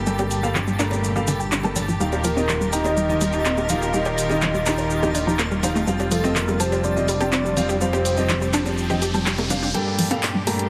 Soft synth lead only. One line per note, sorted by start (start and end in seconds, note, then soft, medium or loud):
2.25 2.69 A#4 medium
2.73 3.71 D#5 loud
3.70 3.95 F5 loud
3.94 4.42 D#5 loud
4.42 5.59 D#5 medium
6.12 6.37 A4 medium
6.36 6.62 A#4 medium
6.60 6.86 C5 loud
6.84 7.80 D5 loud
7.81 8.74 C5 loud